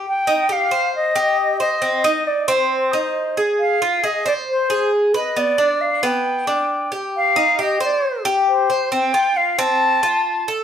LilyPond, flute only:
\new Staff \with { instrumentName = "Flute" } { \time 4/4 \key c \minor \tempo 4 = 135 g''4 f''4 ees''4. ees''8~ | ees''4 d''8 c''2 r8 | f''4 ees''8 d''8 c''4 r8 ees''8 | d''4 f''8 g''2 r8 |
f''4 ees''8 d''4 r8 c''4 | g''4 f''8 a''2 r8 | }